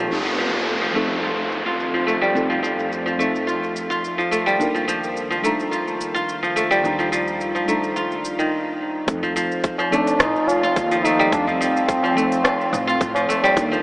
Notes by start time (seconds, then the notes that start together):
Already playing: D#3 F3 G3 A3 C4 D#4 F4 G4 D5 A#5
0.09 F2 F3 A3 C4 D#4 A4, downlifter, shaker
0.25 F3
0.38 F3
0.55 shaker
0.81 F3 C4, shaker
0.93 F3 A3 C4 D#4, shaker
0.97 A4
1.11 shaker
1.23 F4, shaker
1.39 shaker
1.50 F5, shaker
1.66 F4, shaker
1.80 shaker
1.94 F3, shaker
2.07 A3, shaker
2.22 G3, shaker
2.33 F2 F3 A3 C4 D#4, shaker
2.37 A4
2.50 F3, shaker
2.63 F3, shaker
2.79 shaker
2.92 shaker
3.06 F3, shaker
3.18 F3 A3 C4 D#4 A4, shaker
3.36 shaker
3.47 F4, shaker
3.63 shaker
3.76 shaker
3.90 F4, shaker
4.04 shaker
4.18 F3, shaker
4.31 A3, shaker
4.46 G3, shaker
4.58 D#2 D#3 G3 A#3 D4 D#4, shaker
4.62 A#4
4.75 F3, shaker
4.88 F3, shaker
5.04 shaker
5.17 shaker
5.31 F3, shaker
5.42 G3 A3 D4 D#4 A#5, shaker
5.60 shaker
5.68 F4
5.73 shaker
5.88 shaker
6.01 shaker
6.15 F4, shaker
6.29 shaker
6.43 F3, shaker
6.56 A3, shaker
6.71 G3, shaker
6.82 D#2 G3 D4 D#4, shaker
6.86 A#5
6.99 F3, shaker
7.12 F3, shaker
7.28 shaker
7.41 shaker
7.55 F3, shaker
7.66 G3 A3 D4 D#4, shaker
7.70 A#5
7.84 shaker
7.96 F4, shaker
8.12 shaker
8.25 shaker
8.39 D#3, shaker
9.06 F2 F3 A3 C4 D#4 A4, kick, open hi-hat, shaker
9.22 F3, tabla ge, shaker
9.36 F3, shaker
9.52 shaker
9.64 C4, kick, open hi-hat, shaker
9.75 F3 F5, tabla na
9.80 shaker
9.90 F3 A3 C4 D4 D#4 A4, tabla tin, tabla ge, shaker
10.07 open hi-hat, tabla tin, shaker
10.19 A2 D#4 F4, kick, cross-stick, open hi-hat, tabla na, shaker
10.36 shaker
10.47 F4, tabla na, tabla tin, shaker
10.63 F4, shaker
10.76 D#2, kick, open hi-hat, shaker
10.91 F3, open hi-hat, shaker
11.05 A3 D#4, shaker
11.19 G3, shaker
11.31 F2 F3 A3 C4 D4 D#4 A4, kick, open hi-hat, shaker
11.47 F3, tabla ge, shaker
11.61 F3 C4, shaker
11.77 shaker
11.89 kick, open hi-hat, shaker
12.03 F3, tabla na, shaker
12.15 F3 A3 C4 D#4, tabla tin, tabla ge, shaker
12.19 A4
12.31 open hi-hat, tabla tin, shaker
12.44 F4, kick, cross-stick, open hi-hat, tabla na, shaker
12.61 shaker
12.72 A2, tabla tin, shaker
12.87 F4, shaker
13.01 A2, kick, open hi-hat, shaker
13.15 F3, open hi-hat, tabla na, shaker
13.29 D#2 A3, shaker
13.43 G3, tabla tin, shaker
13.55 D#2 D#3 G3 A#3 D4 D#4, kick, open hi-hat, shaker
13.59 A#4
13.70 F3, tabla ge, shaker